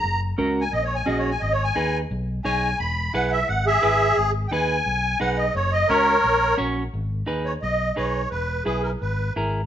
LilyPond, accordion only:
\new Staff \with { instrumentName = "Accordion" } { \time 4/4 \key gis \minor \tempo 4 = 174 << { ais''8 r8 \tuplet 3/2 { r4 gis''8 dis''8 cis''8 gis''8 dis''8 cis''8 gis''8 } | \tuplet 3/2 { dis''8 cis''8 gis''8~ } gis''8 r4. gis''4 | b''4 fis''8 e''8 fis''8 e''4. | r4 <g'' gis''>2 fis''8 dis''8 |
cis''8 dis''8 cis''2 r4 | r4. cis''8 dis''4 cis''4 | b'4 gis'8 ais'8 b'4 r4 | } \\ { r1 | r1 | r2 r8 gis'4.~ | gis'8 r2. r8 |
r4 ais'2 r4 | r1 | r1 | } >> }